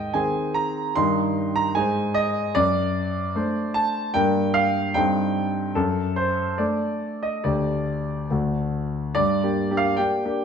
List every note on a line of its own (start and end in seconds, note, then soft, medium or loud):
0.00 0.12 G#2 soft
0.00 0.16 D#5 medium
0.00 0.14 G5 medium
0.14 0.91 D#3 soft
0.14 0.92 C4 soft
0.14 0.92 G#4 soft
0.14 0.55 G#5 medium
0.54 0.95 A#5 medium
0.96 1.73 G2 medium
0.96 1.71 D#3 soft
0.96 1.72 D#4 soft
0.96 1.72 A#4 soft
0.96 1.55 C6 medium
1.56 1.75 A#5 medium
1.75 2.53 G#2 medium
1.75 2.51 G#3 soft
1.75 2.52 D#4 soft
1.75 2.52 C5 soft
1.75 2.15 G#5 medium
2.14 2.55 D#5 medium
2.55 3.33 F#2 medium
2.55 3.75 D5 medium
3.35 4.11 A3 soft
3.35 4.11 D4 soft
3.35 4.11 C5 soft
3.74 4.14 A5 medium
4.14 4.93 G2 medium
4.14 4.91 A#3 soft
4.14 4.92 D4 soft
4.14 4.92 A#4 soft
4.14 4.55 G5 medium
4.54 4.95 F5 medium
4.94 5.74 G2 medium
4.94 5.72 C4 soft
4.94 5.72 D#4 soft
4.94 5.73 A4 soft
4.94 5.76 G5 medium
5.75 6.56 F#2 medium
5.75 6.17 A4 medium
6.16 6.58 C5 medium
6.58 7.40 A3 soft
6.58 7.40 D4 soft
6.58 7.40 A4 soft
6.58 7.22 D5 medium
7.23 7.44 D#5 medium
7.44 8.28 D2 soft
7.44 8.27 A3 soft
7.44 8.27 D4 soft
7.44 8.28 G4 soft
7.44 8.31 D5 medium
8.30 9.13 D2 soft
8.30 9.12 A3 soft
8.30 9.12 D4 soft
8.30 9.12 F#4 soft
9.15 9.42 G2 soft
9.15 9.77 D5 medium
9.43 9.68 A#3 soft
9.43 9.68 D4 soft
9.43 9.68 G4 soft
9.70 9.95 A#3 soft
9.70 9.95 D4 soft
9.70 9.95 G4 soft
9.77 9.98 F5 medium
9.97 10.22 A#3 soft
9.97 10.22 D4 soft
9.97 10.23 G4 soft
9.97 10.45 G5 medium
10.25 10.45 A#3 soft
10.25 10.45 D4 soft
10.25 10.45 G4 soft